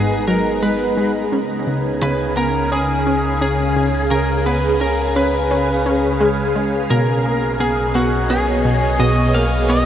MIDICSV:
0, 0, Header, 1, 5, 480
1, 0, Start_track
1, 0, Tempo, 697674
1, 910, Time_signature, 4, 2, 24, 8
1, 6781, End_track
2, 0, Start_track
2, 0, Title_t, "Lead electric guitar"
2, 0, Program_c, 0, 29
2, 0, Note_on_c, 0, 68, 102
2, 187, Note_off_c, 0, 68, 0
2, 189, Note_on_c, 0, 70, 94
2, 428, Note_off_c, 0, 70, 0
2, 431, Note_on_c, 0, 71, 92
2, 766, Note_off_c, 0, 71, 0
2, 1394, Note_on_c, 0, 71, 103
2, 1627, Note_off_c, 0, 71, 0
2, 1630, Note_on_c, 0, 70, 104
2, 1870, Note_off_c, 0, 70, 0
2, 1873, Note_on_c, 0, 68, 100
2, 2344, Note_off_c, 0, 68, 0
2, 2352, Note_on_c, 0, 68, 90
2, 2804, Note_off_c, 0, 68, 0
2, 2829, Note_on_c, 0, 70, 99
2, 3067, Note_off_c, 0, 70, 0
2, 3070, Note_on_c, 0, 71, 97
2, 3308, Note_off_c, 0, 71, 0
2, 3310, Note_on_c, 0, 70, 92
2, 3550, Note_off_c, 0, 70, 0
2, 3552, Note_on_c, 0, 71, 100
2, 4484, Note_off_c, 0, 71, 0
2, 4750, Note_on_c, 0, 70, 94
2, 5229, Note_off_c, 0, 70, 0
2, 5231, Note_on_c, 0, 68, 88
2, 5472, Note_on_c, 0, 66, 95
2, 5478, Note_off_c, 0, 68, 0
2, 5695, Note_off_c, 0, 66, 0
2, 5710, Note_on_c, 0, 68, 100
2, 6190, Note_on_c, 0, 75, 105
2, 6205, Note_off_c, 0, 68, 0
2, 6430, Note_on_c, 0, 77, 106
2, 6438, Note_off_c, 0, 75, 0
2, 6670, Note_on_c, 0, 75, 109
2, 6677, Note_off_c, 0, 77, 0
2, 6781, Note_off_c, 0, 75, 0
2, 6781, End_track
3, 0, Start_track
3, 0, Title_t, "String machine"
3, 0, Program_c, 1, 50
3, 0, Note_on_c, 1, 56, 78
3, 0, Note_on_c, 1, 59, 83
3, 0, Note_on_c, 1, 63, 89
3, 0, Note_on_c, 1, 78, 72
3, 0, Note_on_c, 1, 82, 90
3, 909, Note_off_c, 1, 56, 0
3, 909, Note_on_c, 1, 49, 77
3, 911, Note_off_c, 1, 78, 0
3, 977, Note_on_c, 1, 61, 87
3, 1042, Note_on_c, 1, 80, 71
3, 1132, Note_on_c, 1, 68, 93
3, 1339, Note_on_c, 1, 77, 92
3, 1584, Note_off_c, 1, 82, 0
3, 1599, Note_off_c, 1, 59, 0
3, 2397, Note_off_c, 1, 63, 0
3, 4748, Note_on_c, 1, 47, 84
3, 4750, Note_off_c, 1, 49, 0
3, 4934, Note_on_c, 1, 75, 77
3, 5036, Note_on_c, 1, 59, 96
3, 5402, Note_on_c, 1, 73, 92
3, 5435, Note_off_c, 1, 77, 0
3, 5525, Note_off_c, 1, 80, 0
3, 5807, Note_off_c, 1, 61, 0
3, 6781, Note_off_c, 1, 47, 0
3, 6781, Note_off_c, 1, 59, 0
3, 6781, Note_off_c, 1, 68, 0
3, 6781, Note_off_c, 1, 73, 0
3, 6781, Note_off_c, 1, 75, 0
3, 6781, End_track
4, 0, Start_track
4, 0, Title_t, "Synth arpeggio sound"
4, 0, Program_c, 2, 84
4, 0, Note_on_c, 2, 44, 100
4, 179, Note_off_c, 2, 44, 0
4, 191, Note_on_c, 2, 54, 77
4, 283, Note_off_c, 2, 54, 0
4, 431, Note_on_c, 2, 56, 69
4, 523, Note_off_c, 2, 56, 0
4, 670, Note_on_c, 2, 56, 78
4, 898, Note_off_c, 2, 56, 0
4, 911, Note_on_c, 2, 61, 81
4, 1139, Note_off_c, 2, 61, 0
4, 1150, Note_on_c, 2, 49, 78
4, 1304, Note_off_c, 2, 49, 0
4, 1390, Note_on_c, 2, 49, 99
4, 1618, Note_off_c, 2, 49, 0
4, 1631, Note_on_c, 2, 59, 79
4, 1723, Note_off_c, 2, 59, 0
4, 1869, Note_on_c, 2, 61, 81
4, 1962, Note_off_c, 2, 61, 0
4, 2110, Note_on_c, 2, 61, 81
4, 2338, Note_off_c, 2, 61, 0
4, 2349, Note_on_c, 2, 61, 70
4, 2578, Note_off_c, 2, 61, 0
4, 2590, Note_on_c, 2, 49, 77
4, 2744, Note_off_c, 2, 49, 0
4, 2829, Note_on_c, 2, 49, 94
4, 3058, Note_off_c, 2, 49, 0
4, 3070, Note_on_c, 2, 59, 76
4, 3162, Note_off_c, 2, 59, 0
4, 3310, Note_on_c, 2, 61, 72
4, 3402, Note_off_c, 2, 61, 0
4, 3550, Note_on_c, 2, 61, 78
4, 3778, Note_off_c, 2, 61, 0
4, 3791, Note_on_c, 2, 61, 84
4, 4019, Note_off_c, 2, 61, 0
4, 4031, Note_on_c, 2, 61, 82
4, 4259, Note_off_c, 2, 61, 0
4, 4270, Note_on_c, 2, 56, 93
4, 4424, Note_off_c, 2, 56, 0
4, 4510, Note_on_c, 2, 56, 74
4, 4664, Note_off_c, 2, 56, 0
4, 4749, Note_on_c, 2, 47, 98
4, 4978, Note_off_c, 2, 47, 0
4, 4990, Note_on_c, 2, 58, 71
4, 5082, Note_off_c, 2, 58, 0
4, 5230, Note_on_c, 2, 59, 77
4, 5322, Note_off_c, 2, 59, 0
4, 5470, Note_on_c, 2, 59, 72
4, 5698, Note_off_c, 2, 59, 0
4, 5711, Note_on_c, 2, 59, 83
4, 5939, Note_off_c, 2, 59, 0
4, 5950, Note_on_c, 2, 47, 84
4, 6104, Note_off_c, 2, 47, 0
4, 6189, Note_on_c, 2, 47, 95
4, 6418, Note_off_c, 2, 47, 0
4, 6430, Note_on_c, 2, 58, 72
4, 6523, Note_off_c, 2, 58, 0
4, 6670, Note_on_c, 2, 59, 81
4, 6762, Note_off_c, 2, 59, 0
4, 6781, End_track
5, 0, Start_track
5, 0, Title_t, "Sub bass"
5, 0, Program_c, 3, 38
5, 0, Note_on_c, 3, 32, 90
5, 886, Note_off_c, 3, 32, 0
5, 911, Note_on_c, 3, 37, 90
5, 4727, Note_off_c, 3, 37, 0
5, 4751, Note_on_c, 3, 35, 90
5, 6781, Note_off_c, 3, 35, 0
5, 6781, End_track
0, 0, End_of_file